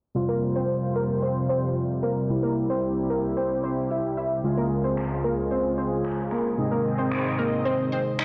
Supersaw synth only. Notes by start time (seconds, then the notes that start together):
0.15 F2 C3 G3 F4 C5
2.30 C2 E4 G4
4.44 C#2 C#3 G#3 F4 G#4
6.58 G#2 D#3 C4 D#5